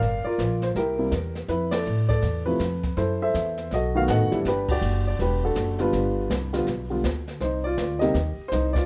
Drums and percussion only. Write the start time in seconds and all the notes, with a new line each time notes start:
0.02 brush sweep, kick, snare
0.39 kick, snare, hi-hat pedal
0.62 snare
0.75 brush sweep, kick, snare
1.11 kick, snare, hi-hat pedal
1.35 snare
1.48 brush sweep, kick, snare
1.72 snare, ride
1.86 hi-hat pedal
2.09 kick, snare
2.22 brush sweep, snare
2.60 kick, snare, hi-hat pedal
2.83 kick, snare
2.97 brush sweep, snare
3.34 kick, snare, hi-hat pedal
3.58 snare
3.71 brush sweep, kick, snare
4.08 kick, snare, hi-hat pedal
4.32 snare
4.45 brush sweep, kick, snare
4.68 kick, ride
4.82 hi-hat pedal
5.19 brush sweep, kick, snare
5.55 kick, snare, hi-hat pedal
5.79 snare
5.93 brush sweep, kick, snare
6.30 kick, snare, hi-hat pedal
6.54 snare
6.67 brush sweep, kick, snare
7.04 kick, snare, hi-hat pedal
7.28 snare
7.40 brush sweep, kick, snare
7.77 kick, snare, hi-hat pedal
8.01 snare
8.14 brush sweep, kick, snare
8.52 kick, snare, hi-hat pedal
8.75 kick, snare